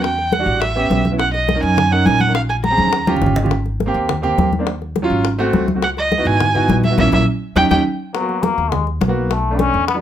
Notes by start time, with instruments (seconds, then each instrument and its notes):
Already playing: upright bass E2
0.03 erhu G5, high bongo, high conga
0.17 high bongo, high conga
0.32 erhu F#5, high bongo, high conga
0.39 grand piano G3 D4 F#4
0.46 upright bass A1
0.61 erhu E5, high bongo, high conga
0.75 grand piano B3 C#4 G4, high bongo, high conga
0.90 upright bass B1, high bongo, low bongo, high conga
1.05 high bongo, high conga
1.11 grand piano B3 C#4 E4
1.19 erhu F#5, high bongo
1.34 erhu D#5, high bongo, high conga
1.49 high bongo, high conga
1.55 grand piano C#4 D#4 A#4
1.62 upright bass F#2, erhu G#5, high conga
1.77 high bongo, high conga, low conga
1.91 grand piano C#4 D#4 A#4, erhu F#5, high bongo, high conga
2.06 upright bass A#1, erhu G#5, high bongo, low bongo, high conga
2.20 erhu F#5, high bongo, high conga
2.27 grand piano C#4 D#4 A#4
2.35 erhu F5, high bongo
2.49 erhu G#5, high bongo, high conga
2.64 erhu A#5, high bongo, high conga
2.71 grand piano C4 C#4 G#4
2.78 upright bass D#2, high conga
2.87 high conga
2.93 high bongo
3.07 grand piano C#4 F4 G4 G5, high bongo, high conga
3.16 low conga
3.21 upright bass G#1, grand piano F5, high bongo, low bongo
3.26 low conga
3.36 grand piano D#5, high bongo, low conga
3.42 grand piano C#4 F4 G4, low conga
3.51 high bongo, high conga
3.65 high bongo, high conga
3.80 high bongo, high conga
3.86 grand piano A#3 C4 G4
3.94 upright bass D#2, high conga
4.09 high bongo, high conga, low conga
4.22 grand piano A#3 C4 G4, high bongo, high conga, low conga
4.38 upright bass D#2, high bongo, low bongo, high conga
4.53 high bongo, high conga
4.59 grand piano A#3 C4 D4
4.67 high bongo, high conga
4.82 high bongo, high conga
4.96 high bongo, high conga
5.02 grand piano F#3 C#4 F4
5.10 upright bass G#1
5.25 high bongo, high conga
5.38 grand piano A3 C4 F#4, high bongo, high conga
5.53 upright bass C#2, high bongo, low bongo, high conga
5.68 high bongo, high conga
5.75 grand piano A3 C4 F#4
5.82 erhu F#5, high bongo, high conga
5.97 erhu D#5, high bongo, high conga
6.12 high bongo, high conga
6.18 grand piano B3 D#4 E4 F#4
6.25 upright bass G#1, erhu G#5, high conga
6.41 high bongo, high conga, low conga
6.54 grand piano B3 D#4 E4 F#4, high bongo, high conga, low conga
6.68 upright bass A#1, high bongo, low bongo, high conga
6.84 erhu E5, high bongo, high conga
6.90 grand piano B3 D#4 E4 F#4
6.98 upright bass A#1, grand piano A#3 C#4 E4, erhu E5, low bongo, high conga
7.12 upright bass A#1, grand piano A#3 C#4 E4, erhu E5, low bongo, high conga
7.55 upright bass D#2, grand piano C#4 D#4 G4, erhu G5, low bongo, high conga
7.70 upright bass D#2, grand piano C#4 D#4 G4, erhu G5, low bongo, high conga
8.13 trombone F#3, grand piano A#3 B3 F#4, high bongo, high conga
8.20 grand piano A#3 B3 F#4
8.29 high bongo, high conga
8.43 trombone A#3, high bongo, high conga
8.58 upright bass D#2, high bongo, high conga
8.71 trombone G#3, high bongo, high conga, low conga
8.87 high bongo, high conga
9.01 upright bass B1, high bongo, low bongo, high conga
9.08 grand piano A#3 B3 F#4
9.30 trombone A3, high bongo, high conga
9.45 high conga
9.50 grand piano A3 C#4 D4
9.59 trombone C#4, high bongo, high conga
9.73 upright bass E2, high bongo, high conga
9.88 trombone B3, high bongo, high conga
9.94 grand piano F#3 G#3 D4